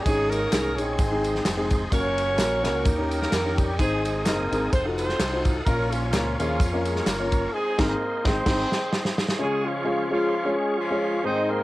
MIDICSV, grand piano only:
0, 0, Header, 1, 2, 480
1, 0, Start_track
1, 0, Key_signature, -5, "major"
1, 0, Tempo, 466926
1, 56, Time_signature, 4, 2, 24, 8
1, 11959, End_track
2, 0, Start_track
2, 0, Title_t, "Grand piano"
2, 0, Program_c, 0, 0
2, 66, Note_on_c, 0, 56, 73
2, 70, Note_on_c, 0, 61, 70
2, 72, Note_on_c, 0, 44, 66
2, 75, Note_on_c, 0, 63, 70
2, 77, Note_on_c, 0, 68, 78
2, 383, Note_off_c, 0, 56, 0
2, 384, Note_off_c, 0, 61, 0
2, 387, Note_off_c, 0, 63, 0
2, 388, Note_off_c, 0, 68, 0
2, 539, Note_on_c, 0, 56, 70
2, 545, Note_on_c, 0, 61, 68
2, 547, Note_on_c, 0, 63, 67
2, 550, Note_on_c, 0, 68, 82
2, 705, Note_off_c, 0, 56, 0
2, 708, Note_off_c, 0, 61, 0
2, 709, Note_off_c, 0, 63, 0
2, 710, Note_off_c, 0, 68, 0
2, 768, Note_off_c, 0, 44, 0
2, 799, Note_on_c, 0, 56, 68
2, 807, Note_on_c, 0, 61, 69
2, 809, Note_on_c, 0, 63, 65
2, 815, Note_on_c, 0, 68, 76
2, 1005, Note_off_c, 0, 56, 0
2, 1009, Note_off_c, 0, 61, 0
2, 1009, Note_off_c, 0, 63, 0
2, 1013, Note_off_c, 0, 68, 0
2, 1019, Note_on_c, 0, 44, 62
2, 1143, Note_on_c, 0, 56, 73
2, 1145, Note_on_c, 0, 60, 65
2, 1150, Note_on_c, 0, 63, 69
2, 1161, Note_on_c, 0, 68, 79
2, 1444, Note_off_c, 0, 56, 0
2, 1445, Note_off_c, 0, 60, 0
2, 1447, Note_off_c, 0, 63, 0
2, 1453, Note_off_c, 0, 68, 0
2, 1618, Note_on_c, 0, 56, 84
2, 1618, Note_on_c, 0, 60, 77
2, 1628, Note_on_c, 0, 63, 72
2, 1629, Note_on_c, 0, 68, 93
2, 1722, Note_off_c, 0, 44, 0
2, 1853, Note_off_c, 0, 56, 0
2, 1853, Note_off_c, 0, 60, 0
2, 1858, Note_off_c, 0, 63, 0
2, 1859, Note_off_c, 0, 68, 0
2, 1969, Note_on_c, 0, 58, 75
2, 1976, Note_on_c, 0, 61, 65
2, 1980, Note_on_c, 0, 66, 65
2, 1987, Note_on_c, 0, 70, 81
2, 2296, Note_off_c, 0, 58, 0
2, 2299, Note_off_c, 0, 61, 0
2, 2301, Note_off_c, 0, 66, 0
2, 2304, Note_off_c, 0, 70, 0
2, 2446, Note_on_c, 0, 58, 75
2, 2452, Note_on_c, 0, 61, 67
2, 2455, Note_on_c, 0, 66, 62
2, 2460, Note_on_c, 0, 70, 81
2, 2620, Note_off_c, 0, 58, 0
2, 2623, Note_off_c, 0, 61, 0
2, 2624, Note_off_c, 0, 66, 0
2, 2627, Note_off_c, 0, 70, 0
2, 2707, Note_on_c, 0, 58, 83
2, 2708, Note_on_c, 0, 61, 79
2, 2715, Note_on_c, 0, 66, 75
2, 2723, Note_on_c, 0, 70, 95
2, 2920, Note_off_c, 0, 58, 0
2, 2921, Note_off_c, 0, 61, 0
2, 2924, Note_off_c, 0, 66, 0
2, 2928, Note_off_c, 0, 70, 0
2, 2939, Note_on_c, 0, 51, 68
2, 3068, Note_on_c, 0, 61, 75
2, 3069, Note_on_c, 0, 63, 64
2, 3079, Note_on_c, 0, 67, 67
2, 3083, Note_on_c, 0, 70, 86
2, 3368, Note_off_c, 0, 61, 0
2, 3368, Note_off_c, 0, 63, 0
2, 3373, Note_off_c, 0, 67, 0
2, 3375, Note_off_c, 0, 70, 0
2, 3551, Note_on_c, 0, 61, 67
2, 3556, Note_on_c, 0, 63, 64
2, 3560, Note_on_c, 0, 67, 68
2, 3569, Note_on_c, 0, 70, 77
2, 3643, Note_off_c, 0, 51, 0
2, 3781, Note_off_c, 0, 61, 0
2, 3784, Note_off_c, 0, 63, 0
2, 3786, Note_off_c, 0, 67, 0
2, 3790, Note_off_c, 0, 70, 0
2, 3894, Note_on_c, 0, 60, 69
2, 3898, Note_on_c, 0, 63, 66
2, 3901, Note_on_c, 0, 44, 67
2, 3904, Note_on_c, 0, 68, 66
2, 3909, Note_on_c, 0, 72, 79
2, 4220, Note_off_c, 0, 60, 0
2, 4221, Note_off_c, 0, 63, 0
2, 4224, Note_off_c, 0, 68, 0
2, 4227, Note_off_c, 0, 72, 0
2, 4370, Note_on_c, 0, 60, 74
2, 4383, Note_on_c, 0, 63, 67
2, 4384, Note_on_c, 0, 68, 67
2, 4390, Note_on_c, 0, 75, 85
2, 4543, Note_off_c, 0, 60, 0
2, 4550, Note_off_c, 0, 63, 0
2, 4550, Note_off_c, 0, 68, 0
2, 4553, Note_off_c, 0, 75, 0
2, 4605, Note_off_c, 0, 44, 0
2, 4638, Note_on_c, 0, 60, 73
2, 4646, Note_on_c, 0, 63, 66
2, 4651, Note_on_c, 0, 68, 68
2, 4653, Note_on_c, 0, 70, 81
2, 4847, Note_off_c, 0, 60, 0
2, 4851, Note_off_c, 0, 63, 0
2, 4853, Note_off_c, 0, 68, 0
2, 4854, Note_off_c, 0, 70, 0
2, 4988, Note_on_c, 0, 63, 71
2, 4991, Note_on_c, 0, 65, 69
2, 4994, Note_on_c, 0, 66, 69
2, 5002, Note_on_c, 0, 69, 77
2, 5288, Note_off_c, 0, 63, 0
2, 5290, Note_off_c, 0, 65, 0
2, 5291, Note_off_c, 0, 66, 0
2, 5295, Note_off_c, 0, 69, 0
2, 5468, Note_on_c, 0, 65, 67
2, 5471, Note_on_c, 0, 63, 72
2, 5477, Note_on_c, 0, 66, 66
2, 5485, Note_on_c, 0, 72, 80
2, 5700, Note_off_c, 0, 65, 0
2, 5702, Note_off_c, 0, 63, 0
2, 5705, Note_off_c, 0, 66, 0
2, 5709, Note_off_c, 0, 72, 0
2, 5824, Note_on_c, 0, 58, 73
2, 5831, Note_on_c, 0, 65, 69
2, 5832, Note_on_c, 0, 46, 69
2, 5833, Note_on_c, 0, 61, 68
2, 5839, Note_on_c, 0, 70, 82
2, 6145, Note_off_c, 0, 58, 0
2, 6148, Note_off_c, 0, 65, 0
2, 6149, Note_off_c, 0, 61, 0
2, 6152, Note_off_c, 0, 70, 0
2, 6307, Note_on_c, 0, 58, 73
2, 6312, Note_on_c, 0, 61, 70
2, 6317, Note_on_c, 0, 65, 72
2, 6323, Note_on_c, 0, 70, 82
2, 6472, Note_off_c, 0, 58, 0
2, 6474, Note_off_c, 0, 61, 0
2, 6477, Note_off_c, 0, 65, 0
2, 6480, Note_off_c, 0, 70, 0
2, 6531, Note_off_c, 0, 46, 0
2, 6575, Note_on_c, 0, 58, 78
2, 6579, Note_on_c, 0, 61, 68
2, 6588, Note_on_c, 0, 65, 65
2, 6590, Note_on_c, 0, 68, 80
2, 6775, Note_off_c, 0, 58, 0
2, 6778, Note_off_c, 0, 61, 0
2, 6782, Note_off_c, 0, 65, 0
2, 6783, Note_off_c, 0, 68, 0
2, 6919, Note_on_c, 0, 58, 78
2, 6925, Note_on_c, 0, 61, 65
2, 6929, Note_on_c, 0, 65, 70
2, 6934, Note_on_c, 0, 70, 85
2, 7214, Note_off_c, 0, 58, 0
2, 7217, Note_off_c, 0, 61, 0
2, 7219, Note_off_c, 0, 65, 0
2, 7222, Note_off_c, 0, 70, 0
2, 7400, Note_on_c, 0, 61, 67
2, 7401, Note_on_c, 0, 58, 70
2, 7410, Note_on_c, 0, 65, 67
2, 7412, Note_on_c, 0, 73, 83
2, 7626, Note_off_c, 0, 61, 0
2, 7627, Note_off_c, 0, 58, 0
2, 7631, Note_off_c, 0, 65, 0
2, 7632, Note_off_c, 0, 73, 0
2, 7998, Note_on_c, 0, 60, 100
2, 7999, Note_on_c, 0, 56, 98
2, 8004, Note_on_c, 0, 44, 97
2, 8007, Note_on_c, 0, 63, 103
2, 8009, Note_on_c, 0, 68, 90
2, 8148, Note_off_c, 0, 60, 0
2, 8149, Note_off_c, 0, 56, 0
2, 8152, Note_off_c, 0, 44, 0
2, 8153, Note_off_c, 0, 63, 0
2, 8154, Note_off_c, 0, 68, 0
2, 8474, Note_on_c, 0, 56, 100
2, 8484, Note_on_c, 0, 60, 95
2, 8488, Note_on_c, 0, 63, 97
2, 8626, Note_off_c, 0, 56, 0
2, 8631, Note_off_c, 0, 60, 0
2, 8634, Note_off_c, 0, 63, 0
2, 8693, Note_on_c, 0, 56, 98
2, 8696, Note_on_c, 0, 60, 99
2, 8703, Note_on_c, 0, 63, 98
2, 8876, Note_off_c, 0, 56, 0
2, 8878, Note_off_c, 0, 60, 0
2, 8882, Note_off_c, 0, 63, 0
2, 9647, Note_on_c, 0, 56, 74
2, 9651, Note_on_c, 0, 61, 69
2, 9652, Note_on_c, 0, 65, 67
2, 9656, Note_on_c, 0, 49, 65
2, 9657, Note_on_c, 0, 68, 69
2, 9662, Note_on_c, 0, 73, 88
2, 9975, Note_off_c, 0, 56, 0
2, 9977, Note_off_c, 0, 61, 0
2, 9977, Note_off_c, 0, 65, 0
2, 9980, Note_off_c, 0, 68, 0
2, 9982, Note_off_c, 0, 73, 0
2, 10121, Note_on_c, 0, 56, 77
2, 10123, Note_on_c, 0, 61, 66
2, 10130, Note_on_c, 0, 65, 71
2, 10131, Note_on_c, 0, 68, 69
2, 10132, Note_on_c, 0, 73, 87
2, 10297, Note_off_c, 0, 56, 0
2, 10298, Note_off_c, 0, 61, 0
2, 10302, Note_off_c, 0, 65, 0
2, 10303, Note_off_c, 0, 68, 0
2, 10303, Note_off_c, 0, 73, 0
2, 10360, Note_off_c, 0, 49, 0
2, 10389, Note_on_c, 0, 56, 74
2, 10394, Note_on_c, 0, 61, 74
2, 10394, Note_on_c, 0, 68, 73
2, 10397, Note_on_c, 0, 65, 68
2, 10403, Note_on_c, 0, 73, 86
2, 10600, Note_off_c, 0, 56, 0
2, 10603, Note_off_c, 0, 61, 0
2, 10603, Note_off_c, 0, 68, 0
2, 10605, Note_off_c, 0, 65, 0
2, 10608, Note_off_c, 0, 73, 0
2, 10742, Note_on_c, 0, 56, 82
2, 10749, Note_on_c, 0, 61, 71
2, 10751, Note_on_c, 0, 65, 66
2, 10755, Note_on_c, 0, 68, 71
2, 10755, Note_on_c, 0, 73, 85
2, 11043, Note_off_c, 0, 56, 0
2, 11047, Note_off_c, 0, 61, 0
2, 11047, Note_off_c, 0, 65, 0
2, 11049, Note_off_c, 0, 73, 0
2, 11050, Note_off_c, 0, 68, 0
2, 11211, Note_on_c, 0, 56, 76
2, 11213, Note_on_c, 0, 61, 70
2, 11219, Note_on_c, 0, 68, 64
2, 11221, Note_on_c, 0, 65, 67
2, 11225, Note_on_c, 0, 73, 85
2, 11449, Note_off_c, 0, 56, 0
2, 11450, Note_off_c, 0, 61, 0
2, 11453, Note_off_c, 0, 68, 0
2, 11454, Note_off_c, 0, 65, 0
2, 11456, Note_off_c, 0, 73, 0
2, 11554, Note_on_c, 0, 56, 81
2, 11558, Note_on_c, 0, 44, 66
2, 11558, Note_on_c, 0, 60, 70
2, 11561, Note_on_c, 0, 63, 71
2, 11563, Note_on_c, 0, 72, 86
2, 11564, Note_on_c, 0, 68, 66
2, 11886, Note_off_c, 0, 56, 0
2, 11888, Note_off_c, 0, 60, 0
2, 11890, Note_off_c, 0, 63, 0
2, 11891, Note_off_c, 0, 68, 0
2, 11891, Note_off_c, 0, 72, 0
2, 11959, Note_off_c, 0, 44, 0
2, 11959, End_track
0, 0, End_of_file